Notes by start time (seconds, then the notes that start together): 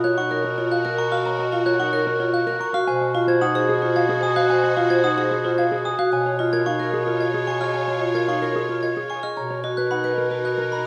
Already playing: B2 F#4 A#4
0.04 C#5 F#6
0.17 D#4 F#5 C#6
0.31 A#4 C#5
0.45 A#4
0.58 F4 C#5
0.72 F5 F#6
0.85 A#4
0.98 A#5 C#6
1.12 F#4 F5 F6
1.25 C#5 A#5
1.39 D#5
1.52 F4 F5
1.66 C#5 F#6
1.80 D#4 F#5 C#6
1.93 A#4 C#5
2.07 A#4
2.20 F4 C#5
2.33 F5 F#6
2.47 A#4
2.60 A#5 C#6
2.74 F#4 F5 F6
2.87 B2 F#4 C5 G#5
3.01 D#5
3.15 F4 F5
3.28 C5 G#6
3.41 D#4 F#5 D#6
3.55 G#4 C5
3.69 G#4
3.82 F4 C5
3.96 F5 G#6
4.09 G#4
4.23 G#5 D#6
4.36 F#4 F5 F#6
4.50 C5 G#5
4.64 D#5
4.77 F4 F5
4.90 C5 G#6
5.04 D#4 F#5 D#6
5.18 G#4 C5
5.31 G#4
5.44 F4 C5
5.58 F5 G#6
5.72 G#4
5.85 G#5 D#6
5.99 F#4 F5 F#6
6.12 B2 F4 C#5 G#5
6.26 C#5
6.39 F4 D#5
6.53 A#4 G#6
6.66 D#4 F5 C#6
6.79 A#4
6.94 G#4
7.07 F4 A#4
7.20 D#5 G#6
7.34 G#4
7.47 G#5 C#6
7.61 G#4 D#5 F6
7.74 C#5 G#5
7.88 C#5
8.01 F4 D#5
8.15 A#4 G#6
8.28 D#4 F5 C#6
8.42 A#4
8.56 G#4
8.69 F4 A#4
8.83 D#5 G#6
8.97 G#4
9.10 G#5 C#6
9.23 G#4 D#5 F6
9.37 B2 D#4 A#4 C#5 A#5
9.51 C#5
9.64 F#4 D#5
9.77 B4 F#6
9.91 D#4 F#5 B5
10.04 B4
10.18 A#4
10.31 F#4 B4
10.45 D#5 F#6
10.59 A#4
10.72 A#5 B5